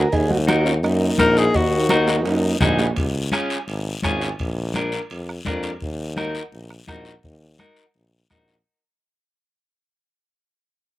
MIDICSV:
0, 0, Header, 1, 7, 480
1, 0, Start_track
1, 0, Key_signature, -6, "minor"
1, 0, Tempo, 355661
1, 173, Time_signature, 4, 2, 24, 8
1, 14821, End_track
2, 0, Start_track
2, 0, Title_t, "Tenor saxophone"
2, 0, Program_c, 0, 66
2, 1607, Note_on_c, 0, 70, 98
2, 1858, Note_on_c, 0, 68, 98
2, 1878, Note_off_c, 0, 70, 0
2, 2099, Note_on_c, 0, 66, 82
2, 2119, Note_off_c, 0, 68, 0
2, 3053, Note_off_c, 0, 66, 0
2, 14821, End_track
3, 0, Start_track
3, 0, Title_t, "Clean electric guitar"
3, 0, Program_c, 1, 27
3, 638, Note_on_c, 1, 63, 69
3, 644, Note_on_c, 1, 66, 60
3, 656, Note_on_c, 1, 70, 66
3, 980, Note_off_c, 1, 63, 0
3, 985, Note_off_c, 1, 66, 0
3, 987, Note_off_c, 1, 70, 0
3, 1601, Note_on_c, 1, 63, 75
3, 1613, Note_on_c, 1, 66, 61
3, 1614, Note_on_c, 1, 70, 72
3, 1943, Note_off_c, 1, 63, 0
3, 1945, Note_off_c, 1, 66, 0
3, 1948, Note_off_c, 1, 70, 0
3, 2562, Note_on_c, 1, 63, 86
3, 2572, Note_on_c, 1, 66, 68
3, 2576, Note_on_c, 1, 70, 96
3, 2903, Note_off_c, 1, 63, 0
3, 2904, Note_off_c, 1, 66, 0
3, 2909, Note_off_c, 1, 70, 0
3, 3516, Note_on_c, 1, 63, 81
3, 3523, Note_on_c, 1, 66, 65
3, 3532, Note_on_c, 1, 68, 89
3, 3858, Note_off_c, 1, 63, 0
3, 3861, Note_off_c, 1, 66, 0
3, 3866, Note_off_c, 1, 68, 0
3, 4477, Note_on_c, 1, 61, 81
3, 4483, Note_on_c, 1, 65, 73
3, 4493, Note_on_c, 1, 68, 99
3, 4818, Note_off_c, 1, 61, 0
3, 4821, Note_off_c, 1, 65, 0
3, 4826, Note_off_c, 1, 68, 0
3, 5446, Note_on_c, 1, 61, 72
3, 5454, Note_on_c, 1, 65, 71
3, 5460, Note_on_c, 1, 68, 92
3, 5783, Note_off_c, 1, 61, 0
3, 5786, Note_off_c, 1, 65, 0
3, 5790, Note_off_c, 1, 68, 0
3, 6416, Note_on_c, 1, 62, 74
3, 6427, Note_on_c, 1, 65, 65
3, 6430, Note_on_c, 1, 70, 90
3, 6748, Note_off_c, 1, 62, 0
3, 6750, Note_off_c, 1, 65, 0
3, 6754, Note_off_c, 1, 70, 0
3, 7368, Note_on_c, 1, 62, 83
3, 7378, Note_on_c, 1, 70, 84
3, 7379, Note_on_c, 1, 65, 59
3, 7704, Note_off_c, 1, 62, 0
3, 7706, Note_off_c, 1, 65, 0
3, 7708, Note_off_c, 1, 70, 0
3, 8323, Note_on_c, 1, 63, 89
3, 8332, Note_on_c, 1, 70, 88
3, 8333, Note_on_c, 1, 66, 68
3, 8661, Note_off_c, 1, 63, 0
3, 8663, Note_off_c, 1, 66, 0
3, 8665, Note_off_c, 1, 70, 0
3, 9282, Note_on_c, 1, 63, 72
3, 9288, Note_on_c, 1, 66, 63
3, 9296, Note_on_c, 1, 70, 78
3, 9620, Note_off_c, 1, 63, 0
3, 9623, Note_off_c, 1, 66, 0
3, 9627, Note_off_c, 1, 70, 0
3, 10246, Note_on_c, 1, 63, 68
3, 10258, Note_on_c, 1, 66, 56
3, 10260, Note_on_c, 1, 70, 85
3, 10583, Note_off_c, 1, 63, 0
3, 10586, Note_off_c, 1, 66, 0
3, 10589, Note_off_c, 1, 70, 0
3, 11213, Note_on_c, 1, 63, 74
3, 11221, Note_on_c, 1, 66, 61
3, 11227, Note_on_c, 1, 70, 77
3, 11546, Note_off_c, 1, 63, 0
3, 11550, Note_off_c, 1, 66, 0
3, 11553, Note_off_c, 1, 70, 0
3, 14821, End_track
4, 0, Start_track
4, 0, Title_t, "Transistor combo organ"
4, 0, Program_c, 2, 18
4, 0, Note_on_c, 2, 70, 94
4, 169, Note_on_c, 2, 63, 75
4, 174, Note_on_c, 2, 68, 90
4, 188, Note_off_c, 2, 70, 0
4, 383, Note_off_c, 2, 63, 0
4, 399, Note_on_c, 2, 63, 69
4, 412, Note_on_c, 2, 66, 81
4, 420, Note_off_c, 2, 68, 0
4, 510, Note_off_c, 2, 63, 0
4, 520, Note_off_c, 2, 66, 0
4, 642, Note_on_c, 2, 63, 68
4, 646, Note_on_c, 2, 66, 101
4, 870, Note_off_c, 2, 63, 0
4, 872, Note_off_c, 2, 66, 0
4, 884, Note_on_c, 2, 61, 72
4, 897, Note_on_c, 2, 65, 83
4, 994, Note_off_c, 2, 61, 0
4, 1004, Note_off_c, 2, 65, 0
4, 1125, Note_on_c, 2, 58, 62
4, 1134, Note_on_c, 2, 63, 84
4, 3472, Note_off_c, 2, 58, 0
4, 3476, Note_off_c, 2, 63, 0
4, 14821, End_track
5, 0, Start_track
5, 0, Title_t, "Tuba"
5, 0, Program_c, 3, 58
5, 172, Note_on_c, 3, 39, 101
5, 1130, Note_on_c, 3, 42, 98
5, 1151, Note_off_c, 3, 39, 0
5, 1514, Note_off_c, 3, 42, 0
5, 1610, Note_on_c, 3, 34, 103
5, 1994, Note_off_c, 3, 34, 0
5, 2090, Note_on_c, 3, 39, 99
5, 3042, Note_on_c, 3, 42, 90
5, 3063, Note_off_c, 3, 39, 0
5, 3429, Note_off_c, 3, 42, 0
5, 3530, Note_on_c, 3, 34, 101
5, 3913, Note_off_c, 3, 34, 0
5, 4010, Note_on_c, 3, 37, 96
5, 4485, Note_off_c, 3, 37, 0
5, 4964, Note_on_c, 3, 32, 87
5, 5349, Note_off_c, 3, 32, 0
5, 5455, Note_on_c, 3, 32, 88
5, 5836, Note_off_c, 3, 32, 0
5, 5941, Note_on_c, 3, 34, 99
5, 6703, Note_off_c, 3, 34, 0
5, 6892, Note_on_c, 3, 41, 79
5, 7274, Note_off_c, 3, 41, 0
5, 7379, Note_on_c, 3, 41, 82
5, 7757, Note_off_c, 3, 41, 0
5, 7855, Note_on_c, 3, 39, 95
5, 8619, Note_off_c, 3, 39, 0
5, 8805, Note_on_c, 3, 34, 81
5, 9189, Note_off_c, 3, 34, 0
5, 9293, Note_on_c, 3, 34, 82
5, 9674, Note_off_c, 3, 34, 0
5, 9770, Note_on_c, 3, 39, 94
5, 10245, Note_off_c, 3, 39, 0
5, 10736, Note_on_c, 3, 34, 79
5, 11116, Note_off_c, 3, 34, 0
5, 11211, Note_on_c, 3, 34, 81
5, 11593, Note_off_c, 3, 34, 0
5, 14821, End_track
6, 0, Start_track
6, 0, Title_t, "Two-headed folk drums"
6, 174, Note_on_c, 9, 36, 88
6, 309, Note_off_c, 9, 36, 0
6, 655, Note_on_c, 9, 37, 85
6, 790, Note_off_c, 9, 37, 0
6, 1139, Note_on_c, 9, 37, 69
6, 1274, Note_off_c, 9, 37, 0
6, 1611, Note_on_c, 9, 37, 89
6, 1613, Note_on_c, 9, 36, 79
6, 1746, Note_off_c, 9, 37, 0
6, 1748, Note_off_c, 9, 36, 0
6, 2093, Note_on_c, 9, 36, 90
6, 2228, Note_off_c, 9, 36, 0
6, 2569, Note_on_c, 9, 37, 87
6, 2704, Note_off_c, 9, 37, 0
6, 3533, Note_on_c, 9, 36, 89
6, 3539, Note_on_c, 9, 37, 82
6, 3668, Note_off_c, 9, 36, 0
6, 3674, Note_off_c, 9, 37, 0
6, 4013, Note_on_c, 9, 36, 88
6, 4148, Note_off_c, 9, 36, 0
6, 4498, Note_on_c, 9, 37, 87
6, 4633, Note_off_c, 9, 37, 0
6, 5457, Note_on_c, 9, 36, 80
6, 5460, Note_on_c, 9, 37, 82
6, 5592, Note_off_c, 9, 36, 0
6, 5594, Note_off_c, 9, 37, 0
6, 5939, Note_on_c, 9, 36, 82
6, 6074, Note_off_c, 9, 36, 0
6, 6421, Note_on_c, 9, 37, 79
6, 6556, Note_off_c, 9, 37, 0
6, 7142, Note_on_c, 9, 37, 67
6, 7277, Note_off_c, 9, 37, 0
6, 7379, Note_on_c, 9, 36, 88
6, 7382, Note_on_c, 9, 37, 81
6, 7513, Note_off_c, 9, 36, 0
6, 7517, Note_off_c, 9, 37, 0
6, 7855, Note_on_c, 9, 36, 81
6, 7990, Note_off_c, 9, 36, 0
6, 8336, Note_on_c, 9, 37, 82
6, 8471, Note_off_c, 9, 37, 0
6, 9048, Note_on_c, 9, 37, 62
6, 9183, Note_off_c, 9, 37, 0
6, 9291, Note_on_c, 9, 36, 74
6, 9294, Note_on_c, 9, 37, 77
6, 9426, Note_off_c, 9, 36, 0
6, 9429, Note_off_c, 9, 37, 0
6, 9773, Note_on_c, 9, 36, 78
6, 9908, Note_off_c, 9, 36, 0
6, 10253, Note_on_c, 9, 37, 75
6, 10388, Note_off_c, 9, 37, 0
6, 11209, Note_on_c, 9, 37, 76
6, 11212, Note_on_c, 9, 36, 78
6, 11344, Note_off_c, 9, 37, 0
6, 11346, Note_off_c, 9, 36, 0
6, 14821, End_track
7, 0, Start_track
7, 0, Title_t, "Drums"
7, 165, Note_on_c, 9, 74, 71
7, 170, Note_on_c, 9, 56, 102
7, 172, Note_on_c, 9, 63, 31
7, 300, Note_off_c, 9, 74, 0
7, 305, Note_off_c, 9, 56, 0
7, 307, Note_off_c, 9, 63, 0
7, 412, Note_on_c, 9, 63, 66
7, 547, Note_off_c, 9, 63, 0
7, 653, Note_on_c, 9, 63, 92
7, 654, Note_on_c, 9, 73, 65
7, 788, Note_off_c, 9, 63, 0
7, 789, Note_off_c, 9, 73, 0
7, 893, Note_on_c, 9, 73, 75
7, 1028, Note_off_c, 9, 73, 0
7, 1121, Note_on_c, 9, 63, 32
7, 1133, Note_on_c, 9, 74, 74
7, 1134, Note_on_c, 9, 56, 88
7, 1256, Note_off_c, 9, 63, 0
7, 1268, Note_off_c, 9, 74, 0
7, 1269, Note_off_c, 9, 56, 0
7, 1595, Note_on_c, 9, 63, 87
7, 1603, Note_on_c, 9, 73, 81
7, 1730, Note_off_c, 9, 63, 0
7, 1738, Note_off_c, 9, 73, 0
7, 1848, Note_on_c, 9, 73, 74
7, 1983, Note_off_c, 9, 73, 0
7, 2077, Note_on_c, 9, 63, 33
7, 2083, Note_on_c, 9, 56, 100
7, 2085, Note_on_c, 9, 74, 74
7, 2212, Note_off_c, 9, 63, 0
7, 2218, Note_off_c, 9, 56, 0
7, 2220, Note_off_c, 9, 74, 0
7, 2552, Note_on_c, 9, 63, 90
7, 2559, Note_on_c, 9, 73, 70
7, 2561, Note_on_c, 9, 65, 79
7, 2687, Note_off_c, 9, 63, 0
7, 2694, Note_off_c, 9, 73, 0
7, 2696, Note_off_c, 9, 65, 0
7, 2797, Note_on_c, 9, 66, 99
7, 2804, Note_on_c, 9, 73, 72
7, 2932, Note_off_c, 9, 66, 0
7, 2939, Note_off_c, 9, 73, 0
7, 3038, Note_on_c, 9, 63, 35
7, 3043, Note_on_c, 9, 56, 87
7, 3043, Note_on_c, 9, 65, 86
7, 3044, Note_on_c, 9, 74, 70
7, 3173, Note_off_c, 9, 63, 0
7, 3178, Note_off_c, 9, 56, 0
7, 3178, Note_off_c, 9, 65, 0
7, 3179, Note_off_c, 9, 74, 0
7, 3517, Note_on_c, 9, 63, 83
7, 3517, Note_on_c, 9, 64, 81
7, 3519, Note_on_c, 9, 73, 76
7, 3527, Note_on_c, 9, 66, 70
7, 3651, Note_off_c, 9, 63, 0
7, 3651, Note_off_c, 9, 64, 0
7, 3654, Note_off_c, 9, 73, 0
7, 3662, Note_off_c, 9, 66, 0
7, 3761, Note_on_c, 9, 66, 97
7, 3761, Note_on_c, 9, 73, 72
7, 3896, Note_off_c, 9, 66, 0
7, 3896, Note_off_c, 9, 73, 0
7, 3993, Note_on_c, 9, 63, 32
7, 4001, Note_on_c, 9, 65, 69
7, 4005, Note_on_c, 9, 74, 73
7, 4127, Note_off_c, 9, 63, 0
7, 4136, Note_off_c, 9, 65, 0
7, 4140, Note_off_c, 9, 74, 0
7, 4475, Note_on_c, 9, 63, 75
7, 4490, Note_on_c, 9, 73, 65
7, 4493, Note_on_c, 9, 65, 63
7, 4610, Note_off_c, 9, 63, 0
7, 4625, Note_off_c, 9, 73, 0
7, 4628, Note_off_c, 9, 65, 0
7, 4727, Note_on_c, 9, 73, 69
7, 4730, Note_on_c, 9, 65, 65
7, 4862, Note_off_c, 9, 73, 0
7, 4864, Note_off_c, 9, 65, 0
7, 4961, Note_on_c, 9, 63, 33
7, 4964, Note_on_c, 9, 74, 70
7, 4978, Note_on_c, 9, 65, 57
7, 5096, Note_off_c, 9, 63, 0
7, 5099, Note_off_c, 9, 74, 0
7, 5113, Note_off_c, 9, 65, 0
7, 5431, Note_on_c, 9, 63, 79
7, 5446, Note_on_c, 9, 73, 70
7, 5456, Note_on_c, 9, 65, 61
7, 5566, Note_off_c, 9, 63, 0
7, 5581, Note_off_c, 9, 73, 0
7, 5591, Note_off_c, 9, 65, 0
7, 5688, Note_on_c, 9, 73, 68
7, 5698, Note_on_c, 9, 65, 66
7, 5823, Note_off_c, 9, 73, 0
7, 5833, Note_off_c, 9, 65, 0
7, 5921, Note_on_c, 9, 63, 29
7, 5928, Note_on_c, 9, 74, 60
7, 5934, Note_on_c, 9, 65, 63
7, 6056, Note_off_c, 9, 63, 0
7, 6063, Note_off_c, 9, 74, 0
7, 6069, Note_off_c, 9, 65, 0
7, 6396, Note_on_c, 9, 63, 81
7, 6400, Note_on_c, 9, 73, 68
7, 6422, Note_on_c, 9, 65, 69
7, 6531, Note_off_c, 9, 63, 0
7, 6535, Note_off_c, 9, 73, 0
7, 6557, Note_off_c, 9, 65, 0
7, 6642, Note_on_c, 9, 73, 62
7, 6663, Note_on_c, 9, 65, 65
7, 6777, Note_off_c, 9, 73, 0
7, 6798, Note_off_c, 9, 65, 0
7, 6883, Note_on_c, 9, 74, 61
7, 6892, Note_on_c, 9, 63, 31
7, 6896, Note_on_c, 9, 65, 64
7, 7018, Note_off_c, 9, 74, 0
7, 7027, Note_off_c, 9, 63, 0
7, 7031, Note_off_c, 9, 65, 0
7, 7353, Note_on_c, 9, 63, 69
7, 7361, Note_on_c, 9, 73, 71
7, 7373, Note_on_c, 9, 65, 66
7, 7373, Note_on_c, 9, 66, 65
7, 7488, Note_off_c, 9, 63, 0
7, 7496, Note_off_c, 9, 73, 0
7, 7508, Note_off_c, 9, 65, 0
7, 7508, Note_off_c, 9, 66, 0
7, 7596, Note_on_c, 9, 73, 68
7, 7607, Note_on_c, 9, 65, 69
7, 7731, Note_off_c, 9, 73, 0
7, 7742, Note_off_c, 9, 65, 0
7, 7835, Note_on_c, 9, 74, 66
7, 7841, Note_on_c, 9, 63, 32
7, 7970, Note_off_c, 9, 74, 0
7, 7976, Note_off_c, 9, 63, 0
7, 8320, Note_on_c, 9, 63, 72
7, 8324, Note_on_c, 9, 73, 62
7, 8455, Note_off_c, 9, 63, 0
7, 8459, Note_off_c, 9, 73, 0
7, 8566, Note_on_c, 9, 73, 65
7, 8701, Note_off_c, 9, 73, 0
7, 8805, Note_on_c, 9, 74, 66
7, 8806, Note_on_c, 9, 63, 32
7, 8940, Note_off_c, 9, 74, 0
7, 8941, Note_off_c, 9, 63, 0
7, 9277, Note_on_c, 9, 63, 75
7, 9281, Note_on_c, 9, 73, 70
7, 9412, Note_off_c, 9, 63, 0
7, 9416, Note_off_c, 9, 73, 0
7, 9515, Note_on_c, 9, 73, 63
7, 9650, Note_off_c, 9, 73, 0
7, 9760, Note_on_c, 9, 74, 61
7, 9766, Note_on_c, 9, 63, 28
7, 9895, Note_off_c, 9, 74, 0
7, 9901, Note_off_c, 9, 63, 0
7, 10236, Note_on_c, 9, 73, 60
7, 10245, Note_on_c, 9, 63, 76
7, 10371, Note_off_c, 9, 73, 0
7, 10380, Note_off_c, 9, 63, 0
7, 10480, Note_on_c, 9, 73, 63
7, 10615, Note_off_c, 9, 73, 0
7, 10718, Note_on_c, 9, 74, 58
7, 10730, Note_on_c, 9, 63, 31
7, 10853, Note_off_c, 9, 74, 0
7, 10865, Note_off_c, 9, 63, 0
7, 11202, Note_on_c, 9, 73, 64
7, 11207, Note_on_c, 9, 63, 68
7, 11337, Note_off_c, 9, 73, 0
7, 11341, Note_off_c, 9, 63, 0
7, 11444, Note_on_c, 9, 73, 58
7, 11579, Note_off_c, 9, 73, 0
7, 14821, End_track
0, 0, End_of_file